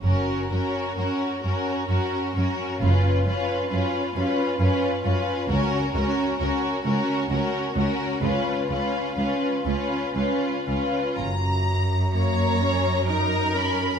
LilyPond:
<<
  \new Staff \with { instrumentName = "Violin section" } { \time 3/4 \key fis \major \tempo 4 = 65 ais'8 ais'8 ais'8 ais'8 ais'8 ais'8 | b'8 b'8 b'8 b'8 b'8 b'8 | ais'8 ais'8 ais'8 ais'8 ais'8 ais'8 | b'8 b'8 b'8 b'8 b'8 b'8 |
ais''4 ais''4 ais''8 b''8 | }
  \new Staff \with { instrumentName = "Violin section" } { \time 3/4 \key fis \major fis'8 fis'8 fis'8 fis'8 fis'8 fis'8 | eis'8 eis'8 eis'8 eis'8 eis'8 eis'8 | fis'8 fis'8 fis'8 fis'8 fis'8 fis'8 | eis'8 eis'8 eis'8 eis'8 eis'8 eis'8 |
r4 cis''4 ais'4 | }
  \new Staff \with { instrumentName = "Viola section" } { \time 3/4 \key fis \major cis'8 cis'8 cis'8 cis'8 cis'8 cis'8 | cis'8 cis'8 cis'8 cis'8 cis'8 cis'8 | cis'8 cis'8 cis'8 cis'8 cis'8 cis'8 | cis'8 cis'8 cis'8 cis'8 cis'8 cis'8 |
r4 ais8 cis'8 dis'8 cis'8 | }
  \new Staff \with { instrumentName = "Cello section" } { \clef bass \time 3/4 \key fis \major fis,8 fis,8 fis,8 fis,8 fis,8 fis,8 | fis,8 fis,8 fis,8 fis,8 fis,8 fis,8 | cis,8 cis,8 cis,8 cis,8 cis,8 cis,8 | cis,8 cis,8 cis,8 cis,8 cis,8 cis,8 |
fis,2. | }
  \new Staff \with { instrumentName = "Double bass section" } { \clef bass \time 3/4 \key fis \major fis,,8 r2 r8 | fis,,8 r2 r8 | cis,8 r2 r8 | cis,8 r2 r8 |
fis,,4 r2 | }
>>